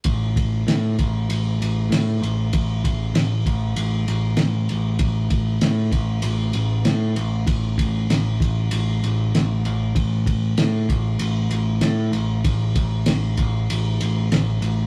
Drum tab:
RD |xxxxxxxx|xxxxxxxx|xxxxxxxx|xxxxxxxx|
SD |--o---o-|--o---o-|--o---o-|--o---o-|
BD |oo-o----|oo-o----|oo-o----|oo-o----|

RD |xxxxxxxx|xxxxxxxx|
SD |--o---o-|--o---o-|
BD |oo-o----|oo-o----|